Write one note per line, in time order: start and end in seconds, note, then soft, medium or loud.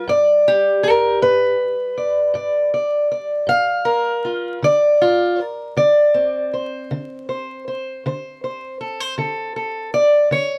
0.00 4.62 G3 soft
0.07 0.76 G2 medium
0.07 1.22 D5 medium
0.48 1.61 G4 medium
0.83 1.21 A#4 medium
1.22 1.90 G2 medium
1.22 2.74 B4 loud
1.98 2.35 D5 soft
2.34 3.03 G2 medium
2.34 2.73 D5 soft
2.74 3.11 D5 soft
3.12 3.48 D5 soft
3.47 4.16 G2 medium
3.47 4.63 F5 loud
3.85 4.62 A#4 medium
4.25 4.58 F4 soft
4.62 5.31 D3 medium
4.62 5.40 D5 medium
5.02 5.39 F4 medium
5.40 5.77 A#4 medium
5.77 6.45 D3 medium
5.77 6.52 D5 medium
6.14 10.58 C4 soft
6.54 7.28 C5 soft
6.91 7.58 D3 medium
7.29 7.67 C5 soft
7.68 8.06 C5 soft
8.06 8.72 D3 medium
8.06 8.43 C5 soft
8.44 8.80 C5 soft
8.81 9.00 A4 soft
9.00 9.18 C5 soft
9.18 9.85 D3 medium
9.18 9.55 A4 soft
9.56 9.93 A4 soft
9.94 10.30 D5 medium
10.31 10.58 D3 medium
10.31 10.58 C#5 medium